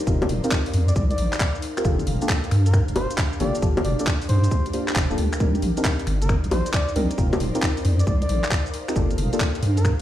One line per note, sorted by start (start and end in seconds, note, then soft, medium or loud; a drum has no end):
0.00 1.85 D#4 medium
0.00 5.40 A#4 medium
0.00 2.66 C5 medium
0.00 0.79 D5 medium
0.07 0.25 F1 loud
0.07 0.21 C4 medium
0.07 0.21 D#4 medium
0.07 0.21 F4 medium
0.07 0.21 G4 medium
0.07 0.21 A#4 medium
0.07 kick loud
0.07 shaker medium
0.22 closed hi-hat soft
0.22 high bongo medium
0.22 shaker soft
0.29 0.40 D#1 loud
0.29 open hi-hat loud
0.44 0.48 C4 medium
0.44 0.48 D#4 medium
0.44 0.48 F4 medium
0.44 0.48 G4 medium
0.44 0.48 A#4 loud
0.44 6.13 F5 medium
0.44 closed hi-hat medium
0.44 shaker medium
0.51 kick loud
0.51 clap loud
0.51 shaker medium
0.66 open hi-hat medium
0.66 shaker soft
0.74 0.92 F2 loud
0.74 open hi-hat loud
0.88 0.93 D5 medium
0.88 closed hi-hat medium
0.88 shaker medium
0.96 1.14 C2 medium
0.96 1.05 D5 medium
0.96 kick loud
0.96 shaker soft
1.11 1.55 D5 medium
1.11 closed hi-hat medium
1.11 shaker soft
1.18 1.29 A#1 medium
1.18 open hi-hat loud
1.33 finger snap medium
1.33 clap medium
1.33 closed hi-hat medium
1.33 shaker medium
1.40 kick loud
1.40 clap loud
1.40 shaker medium
1.55 shaker soft
1.62 open hi-hat loud
1.77 1.84 C4 medium
1.77 1.84 D#4 medium
1.77 1.84 F4 medium
1.77 1.84 G4 medium
1.77 1.84 A#4 medium
1.77 finger snap medium
1.77 closed hi-hat medium
1.77 shaker medium
1.85 2.03 G1 loud
1.85 2.18 A#3 medium
1.85 5.40 D4 medium
1.85 2.18 D4 medium
1.85 2.18 F4 medium
1.85 2.18 G4 medium
1.85 2.18 A4 loud
1.85 kick loud
1.85 shaker medium
1.99 closed hi-hat soft
1.99 shaker soft
2.07 2.18 F1 loud
2.07 open hi-hat loud
2.22 2.29 A#3 medium
2.22 2.29 D4 medium
2.22 2.29 F4 medium
2.22 2.29 G4 medium
2.22 6.08 G4 medium
2.22 2.29 A4 medium
2.22 closed hi-hat medium
2.22 shaker medium
2.29 kick loud
2.29 clap loud
2.29 shaker medium
2.44 closed hi-hat medium
2.44 shaker soft
2.51 2.82 G2 loud
2.51 finger snap soft
2.51 open hi-hat loud
2.66 2.79 A#4 medium
2.66 closed hi-hat medium
2.66 shaker medium
2.74 finger snap medium
2.74 kick loud
2.74 shaker medium
2.88 2.94 F1 medium
2.88 closed hi-hat medium
2.88 shaker soft
2.96 3.06 F1 loud
2.96 3.13 C5 medium
2.96 open hi-hat loud
2.96 high bongo medium
3.11 closed hi-hat medium
3.11 shaker medium
3.18 kick loud
3.18 clap loud
3.18 shaker medium
3.33 shaker soft
3.40 3.51 G1 loud
3.40 3.49 A#3 loud
3.40 3.49 D4 medium
3.40 3.49 F4 medium
3.40 3.49 G4 loud
3.40 3.49 A4 loud
3.40 3.58 D5 medium
3.40 open hi-hat loud
3.55 closed hi-hat medium
3.55 shaker medium
3.62 3.81 G1 loud
3.62 3.77 A#3 medium
3.62 3.77 D4 medium
3.62 3.77 F4 medium
3.62 3.77 G4 medium
3.62 3.77 A4 medium
3.62 kick loud
3.62 shaker medium
3.77 closed hi-hat soft
3.77 high bongo medium
3.77 shaker soft
3.85 3.95 F1 loud
3.85 3.94 D5 medium
3.85 open hi-hat loud
3.99 4.04 A#3 medium
3.99 4.04 D4 medium
3.99 4.04 F4 medium
3.99 4.04 G4 medium
3.99 4.04 A4 loud
3.99 4.04 D5 medium
3.99 closed hi-hat medium
3.99 shaker medium
4.07 kick loud
4.07 clap loud
4.07 shaker medium
4.22 open hi-hat medium
4.22 shaker soft
4.29 4.47 G2 loud
4.29 4.66 C5 loud
4.29 open hi-hat loud
4.44 closed hi-hat medium
4.44 shaker medium
4.51 4.69 D2 medium
4.51 kick loud
4.51 shaker medium
4.66 closed hi-hat medium
4.66 shaker soft
4.73 5.07 A#3 medium
4.73 5.07 D4 medium
4.73 5.07 F4 medium
4.73 5.07 G4 medium
4.73 5.07 C5 medium
4.73 open hi-hat loud
4.88 finger snap medium
4.88 clap medium
4.88 closed hi-hat medium
4.88 shaker medium
4.96 5.07 F1 medium
4.96 kick loud
4.96 clap loud
4.96 shaker medium
5.10 5.16 D1 medium
5.10 5.15 A#3 medium
5.10 5.15 D4 medium
5.10 5.15 F4 medium
5.10 5.15 G4 medium
5.10 5.15 A4 medium
5.10 shaker soft
5.18 5.29 D2 medium
5.18 open hi-hat loud
5.33 finger snap medium
5.33 closed hi-hat medium
5.33 shaker medium
5.40 5.58 C2 loud
5.40 5.74 C4 medium
5.40 5.74 D4 medium
5.40 5.74 D#4 medium
5.40 8.96 D#4 medium
5.40 5.74 G4 medium
5.40 5.74 A#4 loud
5.40 kick loud
5.40 shaker medium
5.55 7.91 D5 medium
5.55 closed hi-hat soft
5.55 shaker soft
5.62 5.73 A#1 loud
5.62 10.02 C5 medium
5.62 open hi-hat loud
5.77 5.85 C4 medium
5.77 5.85 D4 medium
5.77 5.85 D#4 medium
5.77 5.85 G4 medium
5.77 5.85 A#4 medium
5.77 closed hi-hat medium
5.77 shaker medium
5.85 kick loud
5.85 clap loud
5.85 shaker medium
5.99 closed hi-hat medium
5.99 shaker soft
6.05 6.37 G1 loud
6.05 10.02 A#4 medium
6.05 finger snap soft
6.05 open hi-hat loud
6.22 6.35 A#4 medium
6.22 closed hi-hat medium
6.22 shaker medium
6.29 finger snap medium
6.29 kick loud
6.29 shaker medium
6.44 6.49 A#1 medium
6.44 closed hi-hat medium
6.44 shaker soft
6.51 6.62 A#1 loud
6.51 6.69 C5 medium
6.51 open hi-hat loud
6.51 high bongo medium
6.66 closed hi-hat medium
6.66 shaker medium
6.73 6.91 D5 loud
6.73 kick loud
6.73 clap loud
6.73 shaker medium
6.88 shaker soft
6.96 7.07 C2 loud
6.96 7.05 C4 loud
6.96 7.05 D4 medium
6.96 7.05 D#4 medium
6.96 7.05 G4 medium
6.96 7.05 A#4 loud
6.96 open hi-hat loud
7.11 closed hi-hat medium
7.11 shaker medium
7.18 7.36 F1 loud
7.18 7.32 C4 medium
7.18 7.32 D#4 medium
7.18 7.32 F4 medium
7.18 7.32 G4 medium
7.18 7.32 A#4 medium
7.18 kick loud
7.18 shaker medium
7.33 closed hi-hat soft
7.33 high bongo medium
7.33 shaker soft
7.40 7.51 D#1 loud
7.40 open hi-hat loud
7.55 7.60 C4 medium
7.55 7.60 D#4 medium
7.55 7.60 F4 medium
7.55 7.60 G4 medium
7.55 7.60 A#4 loud
7.55 closed hi-hat medium
7.55 shaker medium
7.62 kick loud
7.62 clap loud
7.62 shaker medium
7.77 open hi-hat medium
7.77 shaker soft
7.85 8.03 F2 loud
7.85 open hi-hat loud
7.99 8.04 D5 medium
7.99 10.02 F5 medium
7.99 closed hi-hat medium
7.99 shaker medium
8.07 8.25 C2 medium
8.07 8.16 D5 medium
8.07 kick loud
8.07 shaker medium
8.22 8.66 D5 loud
8.22 closed hi-hat medium
8.22 shaker soft
8.29 8.40 A#1 medium
8.29 open hi-hat loud
8.44 finger snap medium
8.44 clap medium
8.44 closed hi-hat medium
8.44 shaker medium
8.51 kick loud
8.51 clap loud
8.51 shaker medium
8.66 shaker soft
8.74 open hi-hat loud
8.88 8.95 C4 medium
8.88 8.95 D#4 medium
8.88 8.95 F4 medium
8.88 8.95 G4 medium
8.88 8.95 A#4 medium
8.88 finger snap medium
8.88 closed hi-hat medium
8.88 shaker medium
8.96 9.14 G1 loud
8.96 9.29 A#3 medium
8.96 9.29 D4 medium
8.96 9.29 F4 medium
8.96 9.29 G4 medium
8.96 10.02 G4 medium
8.96 9.29 A4 loud
8.96 kick loud
8.96 shaker medium
9.11 closed hi-hat soft
9.11 shaker soft
9.18 9.29 F1 loud
9.18 open hi-hat loud
9.32 9.40 A#3 medium
9.32 9.40 D4 medium
9.32 9.40 F4 medium
9.32 9.40 G4 medium
9.32 9.40 A4 loud
9.32 10.02 D5 medium
9.32 closed hi-hat medium
9.32 shaker medium
9.40 kick loud
9.40 clap loud
9.40 shaker medium
9.55 closed hi-hat medium
9.55 shaker soft
9.62 9.93 G2 loud
9.62 open hi-hat loud
9.77 9.90 A#4 medium
9.77 closed hi-hat medium
9.77 shaker medium
9.85 finger snap medium
9.85 kick loud
9.85 shaker medium